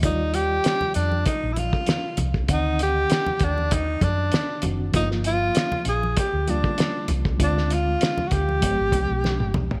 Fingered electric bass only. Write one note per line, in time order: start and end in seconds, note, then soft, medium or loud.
0.03 0.58 D#2 loud
0.96 1.23 F2 medium
1.43 1.70 A#1 medium
2.18 2.46 C2 medium
2.49 3.04 D2 medium
3.41 3.96 D#2 medium
4.01 4.29 F#2 medium
4.64 4.91 F#1 medium
4.94 5.49 G1 loud
5.86 6.13 A#1 medium
6.33 6.61 D2 medium
7.09 7.37 C2 medium
7.40 7.95 D2 loud
8.32 8.59 D2 medium
8.63 8.78 G1 medium
8.80 8.92 G#1 medium
8.92 9.07 C2 medium
9.10 9.37 B1 medium
9.41 9.53 G1 medium
9.55 9.80 B1 medium